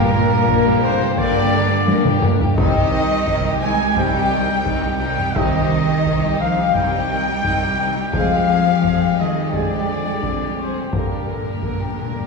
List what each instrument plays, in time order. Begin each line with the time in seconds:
Already playing: double bass section G1, cello section A#2, trombone section D3 G3, viola section G3 A#3, french horn section A#3 F4, violin section G4 A#4, trumpet A#4
0.12 viola section A#3 D4, violin section A#4
0.29 viola section G3 A#3, violin section G4
0.48 double bass section G1, viola section A#3 D4, violin section A#4, taiko
0.65 viola section G3 A#3, violin section G4
0.82 cello section C3, viola section A#3 D4, violin section A#4 C5, trumpet C5
1.00 viola section G3 A#3, violin section G4
1.18 double bass section G1, cello section D3, viola section A#3 D4, violin section A#4 D5, trumpet D5, taiko
1.36 viola section G3 A#3, violin section G4
1.53 viola section A#3 D4, violin section A#4
1.69 viola section G3 A#3, violin section G4
1.88 double bass section G1, viola section A#3 D4, violin section A#4, taiko high
2.05 viola section G3 A#3, violin section G4, taiko mid
2.22 viola section A#3 D4, violin section A#4, taiko low-mid
2.38 viola section G3 A#3, violin section G4, taiko low
2.55 double bass section C2, trombone section C3 G3, viola section D#3 C4, cello section D#3, french horn section C4 G4, violin section D#4 D#5, trumpet D#5, taiko
2.73 viola section G3 D#4, taiko low-mid
2.77 violin section G4
2.89 viola section D#3 C4
2.94 violin section D#4
3.07 viola section G3 D#4
3.12 violin section G4
3.26 double bass section C2, viola section D#3 C4, violin section D#4, taiko
3.42 viola section G3 D#4
3.47 violin section G4
3.60 viola section D#3 C4, cello section G#3, violin section G#5, trumpet G#5
3.65 violin section D#4
3.78 viola section G3 D#4, violin section G4
3.94 double bass section C2, trombone section C3 G3, viola section D#3 C4, cello section G3, french horn section C4 G4, violin section G5, taiko
3.98 violin section D#4, trumpet G5
4.13 viola section G3 D#4, violin section G4
4.31 viola section D#3 C4, violin section D#4
4.48 viola section G3 D#4, violin section G4
4.65 double bass section C2, viola section D#3 C4, violin section D#4, taiko
4.81 viola section G3 D#4
4.85 violin section G4
4.99 viola section D#3 C4, cello section G3, violin section D#4 G5, trumpet G5
5.16 viola section G3 D#4, violin section G4, taiko low-mid
5.32 double bass section C2, trombone section C3 G3, viola section D#3 C4, cello section D#3, french horn section C4 G4, violin section D#4, taiko
5.37 violin section D#5, trumpet D#5
5.51 viola section G3 D#4, violin section G4
5.68 viola section D#3 C4, violin section D#4
5.85 viola section G3 D#4, violin section G4
6.03 double bass section C2, viola section D#3 C4, violin section D#4, taiko
6.19 viola section G3 D#4, violin section G4
6.38 viola section D#3 C4, cello section F3, violin section D#4 F5, trumpet F5
6.56 viola section G3 D#4, violin section G4
6.74 double bass section C2, trombone section C3 G3, viola section D#3 C4, cello section G3, french horn section C4 G4, violin section D#4 G5, trumpet G5, taiko
6.91 viola section G3 D#4, violin section G4
7.09 viola section D#3 C4, violin section D#4
7.27 viola section G3 D#4, violin section G4
7.43 double bass section C2, viola section D#3 C4, violin section D#4, taiko
7.61 viola section G3 D#4, violin section G4
7.78 viola section D#3 C4, violin section D#4
7.96 viola section G3 D#4, violin section G4
8.13 double bass section F2, trombone section C3 G#3, cello section F3, viola section G3 C4, french horn section C4 G4, violin section G#4 F5, trumpet F5, taiko
8.31 viola section G3 G#3, violin section G4
8.49 viola section G3 C4, violin section G#4
8.66 viola section G3 G#3, violin section G4
8.84 double bass section F2, viola section G3 C4, violin section G#4, taiko
9.01 viola section G3 G#3, violin section G4
9.18 cello section D#3, viola section G3 C4, violin section G#4 D#5, trumpet D#5
9.37 viola section G3 G#3, violin section G4
9.52 double bass section F2, trombone section C3 G#3, cello section D3, viola section G3 C4, french horn section C4 G4, violin section G#4 D5, trumpet D5, taiko
9.72 viola section G3 G#3, violin section G4
9.89 viola section G3 C4, violin section G#4
10.06 viola section G3 G#3, violin section G4
10.23 double bass section F2, viola section G3 C4, violin section G#4, taiko
10.40 viola section G3 G#3, violin section G4
10.56 cello section C3, viola section G3 C4, violin section C5, trumpet C5
10.60 violin section G#4
10.75 viola section G3 G#3, violin section G4
10.90 double bass section G2, cello section A#2, viola section D3 A#3, french horn section A#3, violin section A#4, trumpet A#4, taiko
10.95 trombone section D3 G3, french horn section G4
11.02 timpani G2
11.09 timpani G2, viola section G3 D4, violin section G4
11.16 timpani G2
11.23 timpani G2
11.27 viola section D3 A#3, violin section A#4
11.31 timpani G2
11.39 timpani G2
11.44 timpani G2, viola section G3 D4, violin section G4
11.53 timpani G2
11.61 timpani G2, double bass section G2, viola section D3 A#3, violin section A#4, taiko
11.68 timpani G2
11.76 timpani G2, viola section G3 D4
11.81 timpani G2, violin section G4
11.90 timpani G2
11.96 timpani G2, viola section D3 A#3
12.00 violin section A#4
12.05 timpani G2
12.13 timpani G2, viola section G3 D4
12.17 timpani G2, violin section G4